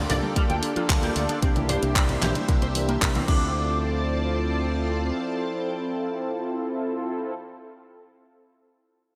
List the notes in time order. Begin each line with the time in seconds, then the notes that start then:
Already playing: A#3 D4 F4 G4 A4 D5
0.09 C2 F3 D5, open hi-hat, low conga
0.23 G3, high conga
0.36 G3 A#3 D4 F4 A4, muted fingered electric bass stroke, kick, closed hi-hat
0.49 D2 D4 G5, closed hi-hat
0.62 D3, open hi-hat
0.75 F3 A#3 D4 F4 A4, muted fingered electric bass stroke, closed hi-hat
0.89 D2 G3, kick, clap, closed hi-hat
1.02 A#3 G4, closed hi-hat
1.16 D2 D4, open hi-hat
1.29 D3 D4, closed hi-hat
1.42 C2 C3 A#3 C4 D4 E4 G4 C5 E5, kick, closed hi-hat
1.55 E3, closed hi-hat, high conga
1.69 G3 C5, open hi-hat, low conga
1.82 C2 A#3, closed hi-hat
1.95 C4, kick, clap, closed hi-hat
2.09 C3, closed hi-hat, low conga
2.22 A#1 E3 G4, clap, open hi-hat, low conga
2.35 G3, closed hi-hat, high conga
2.48 C3 A#3 D4 E4 G4, kick, closed hi-hat
2.62 C2 C4 C5, closed hi-hat
2.75 E3 A#3 D4 E4 G4, open hi-hat
2.88 A#3, closed hi-hat
3.01 C2 C3, kick, clap, closed hi-hat
3.15 E3 C4, closed hi-hat, high conga
3.27 D2 C3 F3 C4 D4 E4 F4 A4 C5 D5 A5, kick, crash